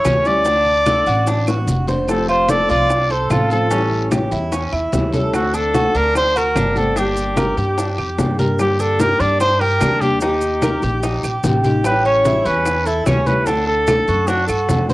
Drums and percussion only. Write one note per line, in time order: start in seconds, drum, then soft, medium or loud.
0.05 high bongo medium
0.05 low bongo medium
0.05 high conga medium
0.05 short guiro medium
0.05 claves medium
0.05 maracas medium
0.25 high bongo soft
0.25 short guiro medium
0.25 maracas soft
0.45 high bongo medium
0.45 high conga soft
0.45 long guiro medium
0.45 maracas medium
0.66 high conga soft
0.86 high bongo soft
0.86 high conga loud
0.86 short guiro medium
0.86 claves medium
0.86 maracas medium
1.06 high bongo soft
1.06 high conga soft
1.06 short guiro medium
1.06 maracas soft
1.26 high bongo medium
1.26 high conga soft
1.26 long guiro medium
1.26 maracas medium
1.47 high bongo medium
1.47 high conga soft
1.47 claves medium
1.47 maracas medium
1.68 high conga medium
1.68 short guiro medium
1.68 maracas medium
1.88 low bongo medium
1.88 high conga medium
1.88 short guiro medium
1.88 maracas soft
2.08 high bongo medium
2.08 high conga soft
2.08 long guiro medium
2.08 claves medium
2.08 maracas medium
2.29 high conga soft
2.48 high bongo medium
2.48 high conga medium
2.48 short guiro medium
2.48 maracas medium
2.69 high bongo soft
2.69 high conga soft
2.69 short guiro medium
2.69 maracas soft
2.89 high bongo medium
2.89 high conga soft
2.89 long guiro medium
2.89 claves medium
2.89 maracas medium
3.10 high bongo soft
3.10 high conga soft
3.30 high bongo medium
3.30 low bongo medium
3.30 high conga medium
3.30 short guiro medium
3.30 claves medium
3.30 maracas medium
3.50 high bongo soft
3.50 short guiro medium
3.50 maracas soft
3.71 high bongo medium
3.71 high conga soft
3.71 long guiro medium
3.71 maracas medium
3.91 high conga soft
4.11 high bongo medium
4.11 high conga loud
4.11 short guiro medium
4.11 claves medium
4.11 maracas medium
4.31 high bongo soft
4.31 high conga soft
4.31 short guiro medium
4.31 maracas soft
4.52 high bongo medium
4.52 high conga soft
4.52 long guiro medium
4.52 maracas medium
4.73 high bongo soft
4.73 high conga soft
4.73 claves medium
4.92 high bongo medium
4.92 low bongo medium
4.92 high conga medium
4.92 short guiro medium
4.92 maracas medium
5.12 high conga medium
5.12 short guiro medium
5.12 maracas soft
5.33 high bongo medium
5.33 high conga soft
5.33 long guiro medium
5.33 claves medium
5.33 maracas medium
5.54 high conga soft
5.54 maracas medium
5.74 high bongo medium
5.74 high conga medium
5.74 short guiro medium
5.74 maracas medium
5.95 high bongo soft
5.95 high conga soft
5.95 short guiro medium
5.95 maracas soft
6.15 high bongo medium
6.15 high conga soft
6.15 long guiro medium
6.15 claves medium
6.15 maracas medium
6.36 high bongo soft
6.36 high conga soft
6.36 maracas soft
6.56 high bongo medium
6.56 low bongo medium
6.56 high conga medium
6.56 short guiro medium
6.56 claves medium
6.56 maracas medium
6.76 high bongo soft
6.76 high conga medium
6.76 short guiro medium
6.76 maracas soft
6.96 high bongo medium
6.96 long guiro medium
6.96 maracas medium
7.17 high conga soft
7.17 maracas medium
7.37 high bongo medium
7.37 high conga loud
7.37 short guiro medium
7.37 claves medium
7.37 maracas medium
7.57 high bongo soft
7.57 high conga soft
7.57 short guiro medium
7.57 maracas soft
7.78 high bongo medium
7.78 high conga soft
7.78 long guiro medium
7.78 maracas medium
7.98 high bongo soft
7.98 high conga soft
7.98 claves medium
8.18 high bongo medium
8.18 low bongo medium
8.18 high conga medium
8.18 short guiro medium
8.18 maracas medium
8.39 high conga medium
8.39 short guiro medium
8.39 maracas soft
8.59 high bongo medium
8.59 long guiro medium
8.59 claves medium
8.59 maracas medium
8.79 high conga soft
8.79 maracas medium
8.99 high bongo medium
8.99 high conga loud
8.99 short guiro medium
8.99 maracas medium
9.20 high bongo soft
9.20 high conga soft
9.20 short guiro medium
9.20 maracas soft
9.40 high bongo medium
9.40 high conga soft
9.40 long guiro medium
9.40 claves medium
9.40 maracas medium
9.61 high bongo soft
9.61 high conga soft
9.81 high bongo medium
9.81 low bongo medium
9.81 high conga medium
9.81 short guiro medium
9.81 claves medium
9.81 maracas medium
10.01 high bongo soft
10.01 high conga medium
10.01 short guiro medium
10.01 maracas soft
10.21 high bongo medium
10.21 high conga soft
10.21 long guiro medium
10.21 maracas medium
10.41 high conga soft
10.41 maracas medium
10.62 high bongo medium
10.62 high conga medium
10.62 short guiro medium
10.62 claves medium
10.62 maracas medium
10.82 high bongo soft
10.82 high conga soft
10.82 short guiro medium
10.82 maracas soft
11.03 high bongo medium
11.03 high conga soft
11.03 long guiro medium
11.03 maracas medium
11.23 high bongo soft
11.23 high conga soft
11.23 claves medium
11.23 maracas medium
11.44 high bongo medium
11.44 low bongo medium
11.44 high conga medium
11.44 short guiro medium
11.44 maracas medium
11.64 high conga medium
11.64 short guiro medium
11.64 maracas soft
11.84 high bongo medium
11.84 long guiro medium
11.84 claves medium
11.84 maracas medium
12.05 high conga soft
12.25 high bongo medium
12.25 high conga medium
12.25 short guiro medium
12.25 maracas medium
12.45 high bongo soft
12.45 high conga soft
12.45 short guiro medium
12.45 maracas soft
12.65 high bongo medium
12.65 high conga soft
12.65 long guiro medium
12.65 claves medium
12.65 maracas medium
12.86 high bongo soft
12.86 high conga soft
12.86 maracas medium
13.06 high bongo medium
13.06 low bongo medium
13.06 high conga medium
13.06 short guiro medium
13.06 claves medium
13.06 maracas medium
13.26 high bongo soft
13.26 high conga medium
13.26 short guiro medium
13.26 maracas soft
13.46 high bongo medium
13.46 high conga soft
13.46 long guiro medium
13.46 maracas medium
13.68 high conga soft
13.87 high bongo medium
13.87 high conga loud
13.87 short guiro medium
13.87 claves medium
13.87 maracas medium
14.08 high bongo soft
14.08 high conga soft
14.08 short guiro medium
14.08 maracas soft
14.27 high bongo medium
14.27 high conga soft
14.27 long guiro medium
14.27 maracas medium
14.48 high bongo soft
14.48 high conga soft
14.48 claves medium
14.48 maracas medium
14.69 high bongo medium
14.69 low bongo medium
14.69 high conga medium
14.69 short guiro medium
14.69 maracas medium
14.89 high conga medium
14.89 short guiro medium
14.89 maracas soft